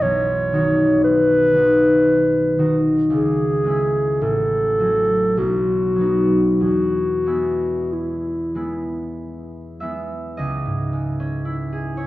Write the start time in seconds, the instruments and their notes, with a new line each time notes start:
Already playing: harp F#4
0.02 harp B1, clarinet C#5
0.53 harp D#3 D#4 F#4
1.04 clarinet B4
1.56 harp D#3 D#4 F#4
2.59 harp D#3 D#4 F#4
3.10 harp C#2, clarinet G#4
3.64 harp G#3 C#4
3.68 harp E4
4.21 harp A1, clarinet A4
4.79 harp F#3 C#4 F#4
5.37 harp B1, clarinet F#4
5.96 harp F#3 B3
6.01 harp D#4
6.61 harp E2, clarinet F#4
7.26 harp G#3 B3 E4
7.93 clarinet E4
8.55 harp G#3 B3 E4
9.80 harp G#3 B3 E4 E5
10.37 harp C#2 D#5
10.66 harp G#2
10.93 harp G#3
11.20 harp C#4
11.45 harp E4
11.73 harp G#4
11.97 harp E4 C#5